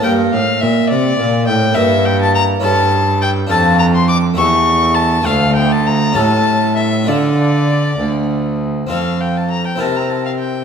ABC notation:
X:1
M:6/8
L:1/16
Q:3/8=68
K:Gdor
V:1 name="Violin"
g2 f2 e2 d4 g2 | [K:Dm] e2 g a b2 a4 g2 | a2 b c' d'2 ^c'4 a2 | f2 g a b2 a4 e2 |
d8- d2 z2 | [K:F] f2 g a b g a b a f g2 |]
V:2 name="Harpsichord"
[B,GB]12 | [K:Dm] [B,EB]6 [^CEA]6 | [DFA]6 [A,GA]6 | [A,FA]6 [^CGA]6 |
[DFA]12 | [K:F] [CFA]6 [CEB]6 |]
V:3 name="Harpsichord" clef=bass
G,,2 A,,2 B,,2 C,2 B,,2 A,,2 | [K:Dm] G,,6 G,,6 | F,,6 E,,6 | D,,6 A,,6 |
D,6 D,,6 | [K:F] F,,6 C,6 |]
V:4 name="Cello" clef=bass
G,,2 A,,2 B,,2 C,2 B,,2 A,,2 | [K:Dm] G,,6 G,,6 | F,,6 E,,6 | D,,6 A,,6 |
D,6 D,,6 | [K:F] F,,6 C,6 |]